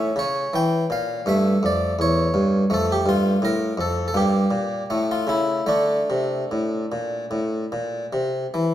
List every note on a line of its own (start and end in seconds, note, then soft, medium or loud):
0.00 1.22 C#4 soft
0.00 0.12 E5 medium
0.16 0.45 C#3 medium
0.16 0.54 C#5 medium
0.53 0.83 E3 medium
0.53 0.86 G5 medium
0.90 1.19 A#2 soft
0.90 1.27 F5 medium
1.26 1.55 G2 medium
1.26 2.67 A3 soft
1.26 1.58 E5 medium
1.63 1.91 F2 soft
1.63 1.95 D5 medium
1.99 2.27 E2 medium
1.99 2.61 C#5 loud
2.34 2.63 G2 medium
2.70 2.99 F2 medium
2.70 4.11 A3 soft
2.70 2.90 A4 medium
2.92 3.08 G4 medium
3.06 3.34 G2 medium
3.06 3.43 F4 medium
3.42 3.71 A2 medium
3.42 3.74 A#4 loud
3.77 4.07 F2 medium
3.77 4.05 A4 medium
4.08 4.15 A4 medium
4.14 4.44 G2 medium
4.14 4.85 A#3 soft
4.14 5.10 G4 medium
4.51 4.81 A#2 medium
4.90 5.21 A2 medium
4.90 5.65 A3 soft
5.11 5.30 F4 medium
5.27 5.60 C#3 medium
5.27 5.63 E4 medium
5.66 6.00 D3 medium
5.66 8.74 A3 soft
5.66 7.76 D4 medium
6.10 6.42 C3 soft
6.51 6.84 A2 medium
6.92 7.24 A#2 soft
7.31 7.63 A2 soft
7.72 8.04 A#2 soft
8.13 8.45 C3 soft
8.54 8.74 E3 soft